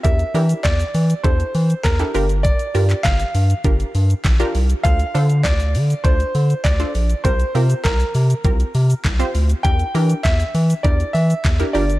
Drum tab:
HH |xxoxxxoxxxoxxxox|xxoxxxoxxxoxxxox|xxoxxxoxxxoxxxox|xxoxxxoxxxoxxxox|
SH |xxxxxxxxxxxxxxxx|xxxxxxxxxxxxxxxx|xxxxxxxxxxxxxxxx|xxxxxxxxxxxxxxxx|
CP |----x-------x---|---xx-------x---|----x-------x---|----x-------x---|
SD |----o-------o---|----o-------o---|----o-------o---|----o-------o---|
BD |o---o---o---o---|o---o---o---o---|o---o---o---o---|o---o---o---o---|

HH |xxoxxxoxxxoxxxox|
SH |xxxxxxxxxxxxxxxx|
CP |----x-------x---|
SD |----o-------o---|
BD |o---o---o---o---|